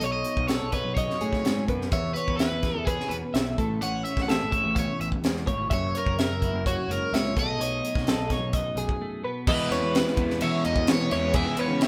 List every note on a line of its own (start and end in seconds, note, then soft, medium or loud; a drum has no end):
0.00 0.23 B1 medium
0.00 0.97 B2 medium
0.00 0.47 F#3 medium
0.00 0.72 D#4 medium
0.00 0.49 C#5 medium
0.00 closed hi-hat medium
0.06 0.12 C#5 medium
0.12 0.47 D#5 medium
0.24 closed hi-hat medium
0.36 0.58 B1 medium
0.36 kick medium
0.48 1.65 F#3 medium
0.48 2.63 G#4 medium
0.48 0.73 A4 medium
0.48 0.71 C#5 medium
0.48 snare medium
0.48 closed hi-hat medium
0.62 0.83 B1 medium
0.72 1.66 D#4 soft
0.72 0.94 B4 medium
0.72 0.97 C#5 medium
0.72 kick medium
0.72 closed hi-hat medium
0.85 1.06 B1 medium
0.95 1.66 F#2 medium
0.95 1.64 C#5 medium
0.95 1.22 D#5 medium
0.95 kick medium
0.95 closed hi-hat medium
1.10 snare soft
1.21 1.43 A2 medium
1.21 1.69 G#4 medium
1.21 closed hi-hat soft
1.33 kick medium
1.33 snare soft
1.44 1.67 G#2 medium
1.44 1.66 A3 soft
1.44 snare medium
1.44 closed hi-hat medium
1.68 1.92 F#2 medium
1.68 1.90 B2 medium
1.68 1.93 B4 medium
1.68 kick medium
1.68 closed hi-hat soft
1.82 snare soft
1.92 2.13 E2 medium
1.92 3.59 E2 medium
1.92 2.13 C#5 medium
1.92 2.17 E5 medium
1.92 kick loud
1.92 closed hi-hat medium
2.14 2.27 B3 soft
2.14 2.36 B4 medium
2.14 2.40 C#5 medium
2.14 closed hi-hat medium
2.27 2.49 E2 medium
2.27 2.87 C#4 soft
2.27 kick medium
2.37 2.88 B4 medium
2.37 2.88 E5 medium
2.37 snare medium
2.37 closed hi-hat medium
2.51 2.72 E2 medium
2.62 4.31 E3 soft
2.62 3.56 G#4 soft
2.62 kick medium
2.62 snare soft
2.62 closed hi-hat soft
2.75 2.96 E2 medium
2.85 3.11 G#4 medium
2.85 3.35 B4 medium
2.85 kick medium
2.85 closed hi-hat medium
2.90 3.83 C#4 medium
3.00 snare soft
3.09 3.21 E2 medium
3.09 3.56 B2 medium
3.09 3.16 B4 medium
3.09 closed hi-hat medium
3.34 3.56 B1 medium
3.34 3.58 E5 medium
3.34 snare medium
3.34 closed hi-hat medium
3.58 3.79 A1 medium
3.58 4.78 A2 medium
3.58 3.81 A4 medium
3.58 kick medium
3.58 closed hi-hat medium
3.81 4.03 A1 medium
3.81 4.56 C#4 medium
3.81 4.28 C#5 medium
3.81 4.04 F#5 medium
3.81 closed hi-hat medium
4.05 4.22 E5 medium
4.05 closed hi-hat medium
4.16 4.38 A1 medium
4.16 kick medium
4.16 snare soft
4.23 4.30 F#5 medium
4.28 5.46 E3 medium
4.28 4.51 A4 medium
4.28 4.74 E5 medium
4.28 snare medium
4.28 closed hi-hat medium
4.33 5.47 G#4 medium
4.43 4.63 A1 medium
4.51 4.75 C#5 medium
4.51 kick medium
4.51 closed hi-hat medium
4.56 5.97 C#4 medium
4.64 4.86 A1 medium
4.75 5.49 E2 medium
4.75 5.00 C#5 medium
4.75 5.00 E5 medium
4.75 kick medium
4.75 closed hi-hat medium
5.00 5.11 A1 medium
5.00 5.08 E5 medium
5.00 closed hi-hat soft
5.12 kick medium
5.23 5.44 E2 medium
5.23 5.46 G#3 medium
5.23 snare medium
5.23 closed hi-hat medium
5.37 snare soft
5.47 5.70 G#1 medium
5.47 5.72 A2 medium
5.47 5.70 C#5 medium
5.47 kick medium
5.47 closed hi-hat soft
5.70 5.92 F#1 medium
5.70 6.90 F#2 medium
5.70 5.97 C#5 medium
5.70 5.95 E5 medium
5.70 kick loud
5.70 closed hi-hat medium
5.95 6.09 B3 soft
5.95 6.19 A#4 medium
5.95 6.18 C#5 medium
5.95 closed hi-hat medium
6.06 6.27 F#1 medium
6.06 6.66 C#4 soft
6.06 kick medium
6.19 6.64 A#4 medium
6.19 6.66 E5 medium
6.19 snare medium
6.19 closed hi-hat medium
6.29 6.50 F#1 medium
6.42 7.34 F#3 medium
6.42 7.37 E4 medium
6.42 kick medium
6.42 closed hi-hat medium
6.52 6.74 F#1 medium
6.66 7.38 C#4 medium
6.66 6.91 F#4 medium
6.66 7.13 C#5 medium
6.66 kick medium
6.66 closed hi-hat medium
6.89 6.99 F#1 medium
6.89 7.14 G#2 medium
6.89 7.15 A#4 medium
6.89 closed hi-hat medium
7.13 7.34 C#2 medium
7.13 7.36 A#2 medium
7.13 7.38 C#5 medium
7.13 7.37 E5 medium
7.13 snare medium
7.13 closed hi-hat medium
7.36 7.57 B1 medium
7.36 9.21 B2 medium
7.36 8.07 F#3 medium
7.36 9.00 A3 medium
7.36 7.61 D#4 medium
7.36 8.07 G#4 medium
7.36 7.61 A4 medium
7.36 8.98 D#5 medium
7.36 kick medium
7.36 closed hi-hat medium
7.58 7.80 B1 medium
7.58 8.30 D#4 medium
7.58 8.07 C#5 medium
7.58 closed hi-hat medium
7.85 closed hi-hat medium
7.95 8.16 B1 medium
7.95 kick medium
7.95 snare soft
8.07 9.22 F#3 medium
8.07 9.22 G#4 medium
8.07 8.31 A4 medium
8.07 snare loud
8.07 closed hi-hat medium
8.17 8.39 B1 medium
8.30 9.22 D#4 medium
8.30 8.53 C#5 medium
8.30 kick medium
8.30 snare soft
8.30 closed hi-hat medium
8.39 8.61 B1 medium
8.53 9.22 F#2 medium
8.53 8.77 D#5 medium
8.53 kick medium
8.53 closed hi-hat medium
8.75 8.87 B1 medium
8.75 9.24 G#4 medium
8.75 closed hi-hat medium
8.89 kick medium
9.02 9.22 A3 medium
9.23 9.45 B2 medium
9.23 9.48 B4 medium
9.47 9.58 E2 loud
9.47 11.36 E2 medium
9.47 11.14 E3 medium
9.47 11.13 G#3 medium
9.47 11.12 B3 medium
9.47 10.45 B4 medium
9.47 9.72 D#5 medium
9.47 kick loud
9.47 crash loud
9.51 11.10 E4 medium
9.71 9.81 E2 medium
9.71 10.19 B3 medium
9.71 9.95 C#5 medium
9.71 snare soft
9.71 ride medium
9.82 10.03 E2 medium
9.95 10.65 C#4 medium
9.95 10.42 B4 medium
9.95 snare loud
9.95 ride medium
10.08 snare soft
10.17 10.38 E2 medium
10.17 10.88 B3 medium
10.17 kick medium
10.17 ride medium
10.31 snare soft
10.41 11.11 B2 medium
10.41 10.62 E3 loud
10.41 10.65 C#5 medium
10.41 10.65 E5 medium
10.41 ride loud
10.65 10.86 E2 loud
10.65 11.61 C#4 medium
10.65 11.12 D#5 medium
10.65 10.89 D#5 medium
10.65 ride medium
10.76 kick medium
10.87 11.09 E3 loud
10.87 11.58 B3 medium
10.87 snare loud
10.87 ride loud
10.92 11.34 C#5 medium
11.11 11.42 E2 medium
11.11 11.88 E3 medium
11.11 11.34 E3 medium
11.11 11.35 G#3 medium
11.11 11.37 B3 medium
11.11 11.37 E4 medium
11.11 11.35 C#5 medium
11.11 snare soft
11.11 ride medium
11.34 11.88 E2 medium
11.34 11.88 E3 medium
11.34 11.88 G#3 loud
11.34 11.88 B3 medium
11.34 11.58 G#4 loud
11.34 11.60 E5 medium
11.34 kick loud
11.34 ride loud
11.38 11.88 E4 loud
11.46 11.70 E3 medium
11.57 11.88 B3 medium
11.57 11.82 B4 medium
11.57 11.84 C#5 medium
11.57 ride medium
11.70 11.88 C#3 medium
11.81 11.88 C#4 medium
11.81 11.88 E5 medium
11.81 snare loud
11.81 ride medium